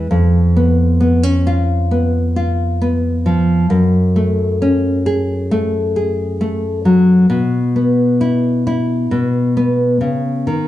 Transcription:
0.00 0.10 E2 medium
0.00 0.55 B3 medium
0.11 3.65 F2 medium
0.56 0.99 B3 medium
1.01 1.23 B3 medium
1.23 3.71 C#4 soft
1.47 2.35 F4 medium
1.91 2.80 B3 soft
2.36 3.66 F4 medium
2.81 3.66 B3 medium
3.26 3.65 F3 medium
3.70 7.25 F#2 medium
4.16 5.50 A3 medium
4.62 7.26 C#4 medium
5.06 5.95 G#4 medium
5.51 6.40 A3 medium
5.96 7.25 G#4 soft
6.41 7.25 A3 soft
6.85 7.25 F#3 medium
7.30 9.05 B2 medium
7.76 9.56 B3 soft
8.21 8.66 E4 medium
8.67 9.11 E4 medium
9.11 10.00 B2 medium
9.57 10.68 B3 soft
10.01 10.46 C#3 medium
10.47 10.68 D#3 medium

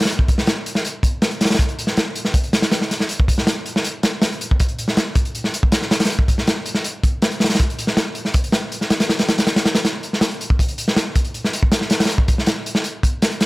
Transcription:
0.00 snare medium
0.00 closed hi-hat medium
0.04 snare medium
0.04 closed hi-hat medium
0.09 closed hi-hat medium
0.19 kick medium
0.28 kick loud
0.28 closed hi-hat medium
0.38 snare medium
0.47 snare loud
0.47 closed hi-hat medium
0.66 closed hi-hat medium
0.75 snare medium
0.85 closed hi-hat medium
1.03 kick medium
1.03 closed hi-hat medium
1.22 snare loud
1.22 closed hi-hat medium
1.31 closed hi-hat soft
1.41 snare medium
1.41 closed hi-hat medium
1.45 snare medium
1.45 closed hi-hat medium
1.50 snare loud
1.50 closed hi-hat medium
1.55 snare medium
1.55 closed hi-hat medium
1.59 kick loud
1.59 closed hi-hat medium
1.69 closed hi-hat soft
1.79 closed hi-hat medium
1.87 snare soft
1.97 snare loud
1.97 closed hi-hat medium
2.16 closed hi-hat medium
2.25 snare soft
2.34 kick loud
2.34 closed hi-hat medium
2.44 closed hi-hat soft
2.53 snare loud
2.53 closed hi-hat medium
2.62 snare loud
2.62 closed hi-hat medium
2.71 snare loud
2.71 closed hi-hat medium
2.81 snare medium
2.91 snare soft
2.91 closed hi-hat medium
3.00 snare soft
3.09 closed hi-hat medium
3.20 kick loud
3.28 kick medium
3.28 closed hi-hat medium
3.38 snare medium
3.47 snare loud
3.47 closed hi-hat medium
3.66 closed hi-hat medium
3.76 snare medium
3.84 closed hi-hat medium
4.03 snare loud
4.03 closed hi-hat medium
4.22 snare loud
4.22 closed hi-hat medium
4.32 closed hi-hat soft
4.41 closed hi-hat medium
4.51 kick loud
4.60 kick loud
4.60 closed hi-hat medium
4.69 closed hi-hat soft
4.79 closed hi-hat medium
4.88 snare medium
4.97 snare loud
4.97 closed hi-hat medium
5.15 kick loud
5.15 closed hi-hat medium
5.25 closed hi-hat soft
5.35 closed hi-hat medium
5.44 snare soft
5.54 closed hi-hat medium
5.63 kick medium
5.72 snare loud
5.72 closed hi-hat loud
5.82 snare medium
5.91 snare loud
5.91 closed hi-hat medium
6.00 snare medium
6.00 closed hi-hat medium
6.05 snare medium
6.05 closed hi-hat medium
6.10 closed hi-hat medium
6.19 kick loud
6.28 kick loud
6.28 closed hi-hat medium
6.38 snare soft
6.47 snare loud
6.47 closed hi-hat medium
6.66 closed hi-hat medium
6.74 snare medium
6.84 closed hi-hat medium
7.04 kick loud
7.04 closed hi-hat medium
7.22 snare loud
7.22 closed hi-hat medium
7.31 closed hi-hat soft
7.40 snare medium
7.40 closed hi-hat medium
7.44 snare medium
7.44 closed hi-hat medium
7.49 snare medium
7.49 closed hi-hat medium
7.55 snare medium
7.55 closed hi-hat medium
7.59 kick loud
7.59 closed hi-hat medium
7.70 closed hi-hat soft
7.79 closed hi-hat medium
7.87 snare medium
7.97 snare loud
7.97 closed hi-hat medium
8.15 closed hi-hat medium
8.25 snare soft
8.34 kick loud
8.34 closed hi-hat medium
8.44 closed hi-hat medium
8.52 snare loud
8.52 closed hi-hat medium
8.72 closed hi-hat medium
8.81 snare soft
8.90 snare loud
8.90 closed hi-hat medium
9.00 snare loud
9.00 closed hi-hat medium
9.09 snare loud
9.09 closed hi-hat medium
9.19 snare loud
9.19 closed hi-hat medium
9.29 snare loud
9.29 closed hi-hat medium
9.38 snare loud
9.38 closed hi-hat medium
9.47 snare medium
9.47 closed hi-hat medium
9.56 snare loud
9.56 closed hi-hat medium
9.66 snare loud
9.66 closed hi-hat medium
9.75 snare loud
9.75 closed hi-hat medium
9.85 snare loud
9.85 closed hi-hat medium
10.03 closed hi-hat medium
10.13 snare soft
10.21 snare loud
10.21 closed hi-hat medium
10.31 closed hi-hat soft
10.41 closed hi-hat medium
10.50 kick loud
10.59 kick loud
10.59 closed hi-hat medium
10.68 closed hi-hat soft
10.78 closed hi-hat medium
10.88 snare medium
10.96 snare loud
10.96 closed hi-hat medium
11.15 kick loud
11.15 closed hi-hat medium
11.25 closed hi-hat soft
11.34 closed hi-hat medium
11.44 snare soft
11.53 closed hi-hat medium
11.63 kick medium
11.72 snare loud
11.72 closed hi-hat medium
11.81 snare medium
11.90 snare loud
11.90 closed hi-hat medium
12.00 snare loud
12.00 closed hi-hat medium
12.04 snare medium
12.04 closed hi-hat medium
12.09 closed hi-hat medium
12.18 kick loud
12.28 kick loud
12.28 closed hi-hat medium
12.38 snare medium
12.46 snare loud
12.46 closed hi-hat medium
12.66 closed hi-hat medium
12.75 snare medium
12.84 closed hi-hat medium
13.03 kick medium
13.03 closed hi-hat medium
13.22 snare loud
13.22 closed hi-hat loud
13.32 closed hi-hat soft
13.41 snare medium
13.41 closed hi-hat medium

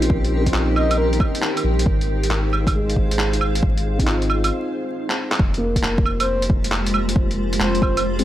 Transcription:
0.00 0.55 A#3 medium
0.00 0.39 C4 medium
0.00 1.55 C#4 medium
0.00 0.44 D#4 medium
0.00 4.47 D#4 medium
0.00 0.50 F4 medium
0.00 1.83 G4 medium
0.00 1.82 A#4 medium
0.00 4.51 C5 medium
0.00 1.82 G5 medium
0.00 closed hi-hat medium
0.10 0.53 A#1 loud
0.10 kick loud
0.24 closed hi-hat soft
0.41 2.00 C4 medium
0.46 2.02 D#4 medium
0.46 kick medium
0.46 closed hi-hat soft
0.51 1.19 A#1 loud
0.51 2.05 F4 medium
0.51 clap loud
0.76 0.96 D#5 medium
0.76 claves soft
0.91 closed hi-hat medium
0.91 claves medium
0.98 1.07 A#4 medium
1.13 1.17 A#4 medium
1.13 closed hi-hat soft
1.20 kick loud
1.20 claves medium
1.35 closed hi-hat soft
1.42 clap loud
1.57 closed hi-hat soft
1.57 claves soft
1.64 1.85 A#1 medium
1.79 closed hi-hat medium
1.86 2.29 G#1 loud
1.86 4.48 G#4 medium
1.86 4.48 C5 medium
1.86 4.48 F5 medium
1.86 kick loud
2.01 closed hi-hat soft
2.23 closed hi-hat soft
2.30 2.95 G#1 loud
2.30 clap loud
2.53 claves medium
2.67 kick medium
2.67 closed hi-hat medium
2.67 claves medium
2.74 4.36 G#3 medium
2.90 closed hi-hat soft
2.96 3.62 G#1 loud
2.96 kick medium
3.11 closed hi-hat medium
3.19 clap loud
3.33 closed hi-hat soft
3.41 claves medium
3.55 closed hi-hat medium
3.63 4.06 G#1 loud
3.63 kick loud
3.77 closed hi-hat soft
3.98 5.55 C4 medium
3.98 kick medium
3.98 closed hi-hat medium
4.03 4.51 G#1 loud
4.03 5.57 D#4 medium
4.07 5.60 F4 medium
4.07 clap loud
4.22 closed hi-hat soft
4.30 claves medium
4.44 closed hi-hat medium
4.44 claves medium
5.10 clap medium
5.32 clap medium
5.39 5.82 F1 loud
5.39 8.24 G#3 medium
5.39 8.24 F4 medium
5.39 7.14 G4 medium
5.39 8.24 A#4 medium
5.39 8.24 C5 medium
5.39 kick loud
5.54 7.16 A#3 medium
5.54 closed hi-hat soft
5.76 kick medium
5.76 closed hi-hat medium
5.83 6.49 F1 loud
5.83 clap loud
5.98 kick loud
6.05 claves medium
6.20 6.43 C5 medium
6.20 closed hi-hat medium
6.20 claves medium
6.42 closed hi-hat soft
6.50 7.15 F1 loud
6.50 kick loud
6.64 closed hi-hat medium
6.72 clap loud
6.86 closed hi-hat soft
6.94 claves medium
7.09 closed hi-hat medium
7.16 7.59 F1 loud
7.16 8.24 G#4 medium
7.16 kick loud
7.31 closed hi-hat soft
7.53 closed hi-hat medium
7.60 8.24 F1 loud
7.60 8.04 C5 loud
7.60 clap loud
7.75 closed hi-hat soft
7.82 kick loud
7.82 claves medium
7.97 closed hi-hat medium
7.97 claves medium
8.19 8.24 C4 medium
8.19 closed hi-hat soft

